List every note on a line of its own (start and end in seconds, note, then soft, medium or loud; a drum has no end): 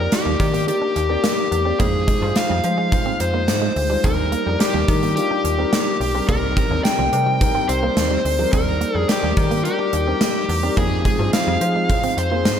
0.00 0.39 A#3 medium
0.00 0.39 D#4 medium
0.00 0.40 G4 medium
0.00 0.14 A#4 medium
0.00 0.40 D5 medium
0.12 0.65 G4 medium
0.12 snare loud
0.12 closed hi-hat medium
0.26 0.36 D#2 loud
0.26 0.35 G3 medium
0.39 0.71 D#3 medium
0.39 0.57 A#3 medium
0.39 0.57 D#4 medium
0.39 0.57 G4 medium
0.39 0.57 D5 medium
0.39 muted clean electric guitar stroke soft
0.39 kick medium
0.39 closed hi-hat medium
0.54 0.63 A#3 medium
0.54 closed hi-hat soft
0.67 0.93 A#3 medium
0.67 0.93 D#4 medium
0.67 0.94 G4 medium
0.67 1.80 G4 medium
0.67 0.94 D5 medium
0.67 closed hi-hat medium
0.82 0.91 D4 medium
0.96 1.17 D#2 medium
0.96 muted clean electric guitar stroke soft
0.96 closed hi-hat medium
1.09 1.44 A#3 medium
1.09 1.18 C4 medium
1.09 1.44 D#4 medium
1.09 1.44 G4 medium
1.09 1.45 D5 medium
1.24 1.33 A#3 medium
1.24 snare loud
1.24 closed hi-hat medium
1.51 1.73 E2 medium
1.51 muted clean electric guitar stroke soft
1.51 closed hi-hat medium
1.65 1.74 A#3 medium
1.65 1.74 C4 medium
1.65 1.74 D#4 medium
1.65 1.75 G4 medium
1.65 1.75 D5 medium
1.79 2.11 F2 loud
1.79 2.06 G#3 medium
1.79 1.88 A#3 medium
1.79 2.06 D#4 medium
1.79 2.06 F4 medium
1.79 2.38 G#4 medium
1.79 2.06 C5 medium
1.79 kick loud
1.79 closed hi-hat medium
2.07 2.17 G#3 medium
2.07 kick medium
2.07 closed hi-hat medium
2.21 2.33 G2 loud
2.21 2.48 G#3 medium
2.21 2.48 D#4 medium
2.21 2.48 F4 medium
2.21 2.48 C5 medium
2.21 muted clean electric guitar stroke soft
2.36 3.23 F5 medium
2.36 snare loud
2.36 closed hi-hat medium
2.50 2.61 F2 loud
2.50 2.59 G3 medium
2.63 2.96 F3 medium
2.63 2.81 G#3 medium
2.63 2.81 D#4 medium
2.63 2.81 F4 medium
2.63 2.82 C5 medium
2.63 muted clean electric guitar stroke soft
2.63 closed hi-hat medium
2.78 2.87 G#3 medium
2.91 3.18 G#3 medium
2.91 3.18 D#4 medium
2.91 3.18 F4 medium
2.91 3.18 C5 medium
2.91 kick loud
2.91 closed hi-hat medium
3.06 3.15 C4 medium
3.20 3.50 F2 medium
3.20 4.07 C5 medium
3.20 muted clean electric guitar stroke soft
3.20 closed hi-hat medium
3.33 3.68 G#3 medium
3.33 3.43 A#3 medium
3.33 3.69 D#4 medium
3.33 3.69 F4 medium
3.33 3.69 C5 medium
3.48 3.69 G#2 medium
3.48 snare loud
3.48 closed hi-hat medium
3.62 3.71 G#3 medium
3.76 3.97 D2 medium
3.76 muted clean electric guitar stroke soft
3.76 open hi-hat medium
3.90 3.99 G3 medium
3.90 3.99 G#3 medium
3.90 3.99 D#4 medium
3.90 3.99 F4 medium
3.90 3.99 C5 medium
4.04 4.36 D#2 loud
4.04 4.30 G3 medium
4.04 4.13 C4 medium
4.04 4.30 D4 medium
4.04 4.31 D#4 medium
4.04 4.60 A#4 medium
4.04 4.31 A#4 medium
4.04 kick loud
4.04 closed hi-hat medium
4.32 4.41 A#3 medium
4.32 closed hi-hat medium
4.46 4.57 F2 medium
4.46 4.72 G3 medium
4.46 4.72 D4 medium
4.46 4.72 D#4 medium
4.46 4.73 A#4 medium
4.46 muted clean electric guitar stroke soft
4.60 5.15 G4 medium
4.60 snare loud
4.60 closed hi-hat medium
4.74 4.85 D#2 medium
4.74 4.83 G3 medium
4.88 5.20 D#3 medium
4.88 5.05 G3 medium
4.88 5.06 D4 medium
4.88 5.06 D#4 medium
4.88 5.06 A#4 medium
4.88 muted clean electric guitar stroke soft
4.88 kick loud
4.88 closed hi-hat medium
5.03 5.12 A#3 medium
5.03 closed hi-hat soft
5.16 5.42 G3 medium
5.16 5.42 D4 medium
5.16 5.43 D#4 medium
5.16 5.43 F4 medium
5.16 6.28 G4 medium
5.16 closed hi-hat medium
5.31 5.40 D4 medium
5.44 5.65 D#2 medium
5.44 muted clean electric guitar stroke soft
5.44 closed hi-hat medium
5.58 5.93 G3 medium
5.58 5.67 C4 medium
5.58 5.93 D4 medium
5.58 5.93 D#4 medium
5.58 5.93 A#4 medium
5.73 5.81 A#3 medium
5.73 snare loud
5.73 closed hi-hat medium
6.00 6.21 B1 medium
6.00 muted clean electric guitar stroke soft
6.00 open hi-hat medium
6.14 6.23 G3 medium
6.14 6.24 C4 medium
6.14 6.23 D4 medium
6.14 6.23 D#4 medium
6.14 6.24 A#4 medium
6.28 6.60 C2 loud
6.28 6.54 G3 medium
6.28 6.38 A#3 medium
6.28 6.54 C4 medium
6.28 6.55 D#4 medium
6.28 6.81 A#4 medium
6.28 6.55 A#4 medium
6.28 kick loud
6.28 closed hi-hat medium
6.57 6.66 G3 medium
6.57 kick medium
6.57 closed hi-hat medium
6.70 6.81 D#2 medium
6.70 6.96 G3 medium
6.70 6.97 C4 medium
6.70 6.97 D#4 medium
6.70 6.97 A#4 medium
6.70 muted clean electric guitar stroke soft
6.84 7.71 G5 medium
6.84 snare loud
6.84 closed hi-hat medium
6.99 7.09 C2 medium
6.99 7.08 F3 medium
7.12 7.44 C3 loud
7.12 7.30 G3 medium
7.12 7.30 C4 medium
7.12 7.30 D#4 medium
7.12 7.30 A#4 medium
7.12 muted clean electric guitar stroke soft
7.12 closed hi-hat medium
7.27 7.36 G3 medium
7.40 7.66 G3 medium
7.40 7.67 C4 medium
7.40 7.67 D#4 medium
7.40 7.67 A#4 medium
7.40 kick medium
7.40 closed hi-hat medium
7.55 7.64 C4 medium
7.69 7.90 C2 medium
7.69 8.53 C5 medium
7.69 muted clean electric guitar stroke soft
7.69 closed hi-hat medium
7.82 8.17 G3 medium
7.82 7.92 A#3 medium
7.82 8.17 C4 medium
7.82 8.18 D#4 medium
7.82 8.18 A#4 medium
7.97 8.18 D#2 medium
7.97 snare loud
7.97 closed hi-hat medium
8.11 8.20 G3 medium
8.25 8.46 D2 medium
8.25 muted clean electric guitar stroke soft
8.25 open hi-hat medium
8.38 8.48 F3 medium
8.38 8.47 G3 medium
8.38 8.48 C4 medium
8.38 8.48 D#4 medium
8.38 8.48 A#4 medium
8.52 8.85 D#2 loud
8.52 8.79 G3 medium
8.52 8.62 C4 medium
8.52 8.79 D4 medium
8.52 8.79 D#4 medium
8.52 8.98 A#4 medium
8.52 8.79 A#4 medium
8.52 kick loud
8.52 closed hi-hat medium
8.81 8.90 A#3 medium
8.81 closed hi-hat medium
8.94 9.05 F2 medium
8.94 9.21 G3 medium
8.94 9.21 D4 medium
8.94 9.21 D#4 medium
8.94 9.11 G#4 medium
8.94 9.21 A#4 medium
8.94 muted clean electric guitar stroke soft
9.08 9.64 G4 medium
9.08 snare loud
9.08 closed hi-hat medium
9.23 9.34 D#2 medium
9.23 9.32 G3 medium
9.37 9.69 D#3 medium
9.37 9.54 G3 medium
9.37 9.54 D4 medium
9.37 9.55 D#4 medium
9.37 9.55 A#4 medium
9.37 muted clean electric guitar stroke soft
9.37 kick loud
9.37 closed hi-hat medium
9.51 9.60 A#3 medium
9.51 closed hi-hat soft
9.65 9.91 G3 medium
9.65 9.91 D4 medium
9.65 9.91 D#4 medium
9.65 10.78 G4 medium
9.65 9.91 A#4 medium
9.65 closed hi-hat medium
9.79 9.88 D4 medium
9.93 10.14 D#2 medium
9.93 muted clean electric guitar stroke soft
9.93 closed hi-hat medium
10.07 10.42 G3 medium
10.07 10.16 C4 medium
10.07 10.42 D4 medium
10.07 10.42 D#4 medium
10.07 10.42 A#4 medium
10.21 10.30 A#3 medium
10.21 snare loud
10.21 closed hi-hat medium
10.49 10.70 E2 loud
10.49 muted clean electric guitar stroke soft
10.49 open hi-hat medium
10.63 10.72 G3 medium
10.63 10.72 C4 medium
10.63 10.72 D4 medium
10.63 10.72 D#4 medium
10.63 10.72 A#4 medium
10.77 11.09 F2 loud
10.77 11.03 F3 medium
10.77 10.86 A#3 medium
10.77 11.03 C4 medium
10.77 11.03 D#4 medium
10.77 11.03 G#4 medium
10.77 11.30 G#4 medium
10.77 kick loud
10.77 closed hi-hat medium
11.05 11.14 G#3 medium
11.05 kick medium
11.05 closed hi-hat medium
11.19 11.30 G2 medium
11.19 11.45 F3 medium
11.19 11.45 C4 medium
11.19 11.46 D#4 medium
11.19 11.46 G#4 medium
11.19 muted clean electric guitar stroke soft
11.33 12.20 F5 medium
11.33 snare loud
11.33 closed hi-hat medium
11.47 11.58 F2 loud
11.47 11.57 G3 medium
11.61 11.78 F3 medium
11.61 11.93 F3 medium
11.61 11.79 C4 medium
11.61 11.79 D#4 medium
11.61 11.79 G#4 medium
11.61 muted clean electric guitar stroke soft
11.61 closed hi-hat medium
11.76 11.85 G#3 medium
11.89 12.15 F3 medium
11.89 12.15 C4 medium
11.89 12.16 D#4 medium
11.89 12.16 G#4 medium
11.89 kick medium
11.89 closed hi-hat medium
12.03 12.12 C4 medium
12.03 closed hi-hat soft
12.17 12.47 F2 medium
12.17 12.60 C5 medium
12.17 muted clean electric guitar stroke soft
12.17 closed hi-hat medium
12.31 12.60 F3 medium
12.31 12.41 A#3 medium
12.31 12.60 C4 medium
12.31 12.60 D#4 medium
12.31 12.60 G#4 medium
12.45 12.60 G#2 medium
12.45 snare loud
12.45 closed hi-hat medium